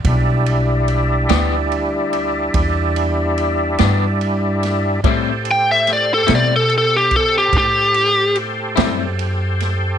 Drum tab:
RD |xxxxxxxxxxxx|xxxxxxxxxxxx|
SD |---o-----o-o|--oo-----o-o|
BD |o-----o-----|o----oo-----|